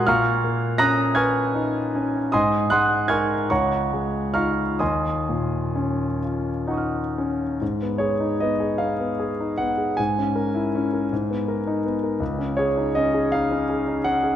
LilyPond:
\new Staff \with { instrumentName = "Grand piano" } { \time 6/8 \key ees \dorian \tempo 4. = 51 << { <f'' bes'' des''' f'''>4 <bes'' ees''' ges''' bes'''>8 <aes'' des''' f''' aes'''>4. | <ees'' aes'' c''' ees'''>8 <ges'' c''' ees''' ges'''>8 <aes'' des''' f''' aes'''>8 <des'' ges'' bes'' des'''>4 <f'' bes'' des''' f'''>8 | <ees'' aes'' c''' ees'''>4. r8 <ges'' des''' ees''' f'''>4 | \key gis \dorian r8 cis''8 dis''8 eis''4 fis''8 |
gis''2~ gis''8 r8 | r8 cis''8 dis''8 eis''4 fis''8 | } \\ { bes,8 bes8 des'8 ces''8 ees'8 des'8 | aes,8 aes8 <ees' bes'>8 des,8 aes8 <ees' f'>8 | ees,8 bes,8 des'8 f'8 ees'8 des'8 | gis,16 b16 gis'16 dis'16 b16 gis'16 dis'16 b16 gis'16 dis'16 b16 gis'16 |
gis,16 cis'16 ais'16 e'16 cis'16 ais'16 gis,16 b16 ais'16 dis'16 b16 ais'16 | cis,16 cis'16 gis'16 dis'16 cis'16 gis'16 dis'16 cis'16 gis'16 dis'16 cis'16 gis'16 | } >> }